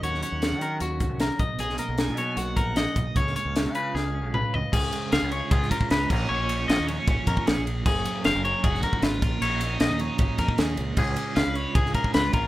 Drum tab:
CC |----------------|----------------|----------------|x-------------x-|
RD |----------------|----------------|----------------|--x-x-x-x-x-x---|
HH |x-x-x-x-x-x-x-x-|x-x-x-x-x-x-x-x-|x-x-x-x---------|----------------|
SD |-o--o-------o---|-o--o-------o---|-o--o---o-------|----o----o--o---|
T2 |----------------|----------------|------------o---|----------------|
FT |----------------|----------------|--------------o-|----------------|
BD |----------o---o-|----------o---o-|o---------------|o-------o-oo--o-|

CC |----------------|x---------------|----------------|x---------------|
RD |--x-x-x-x-x-x-x-|--x-x-x-x-x-x-x-|x-x-x-x-x-x-x-x-|--x-x-x-x-x-x-x-|
HH |----------------|----------------|----------------|----------------|
SD |----o-------o---|----o----o--o---|----o-------o---|----o----o--o---|
T2 |----------------|----------------|----------------|----------------|
FT |----------------|----------------|----------------|----------------|
BD |--------o-oo----|o-------o-oo--o-|--------o-oo----|o-------o-oo--o-|